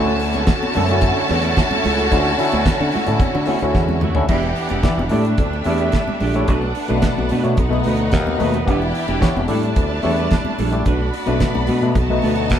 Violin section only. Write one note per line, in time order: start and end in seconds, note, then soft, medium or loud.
0.00 3.99 A4 loud
0.00 3.99 A5 loud
4.29 5.10 B3 medium
4.29 5.10 G4 medium
4.29 5.10 D5 medium
5.11 6.45 A3 medium
5.11 6.45 G4 medium
5.11 6.46 E5 medium
6.48 7.56 D4 medium
6.48 7.56 B4 medium
6.48 7.56 F#5 medium
7.58 8.65 D#4 medium
7.58 8.66 B4 medium
7.58 8.65 F#5 medium
8.68 9.48 E4 medium
8.68 9.48 D5 medium
8.68 9.48 G5 medium
9.49 10.84 E4 medium
9.49 10.83 D5 medium
9.49 10.83 A5 medium
10.86 11.94 F#4 medium
10.86 11.94 D5 medium
10.86 11.94 B5 medium
11.97 12.59 F#4 medium
11.97 12.59 D#5 medium
11.97 12.59 A5 medium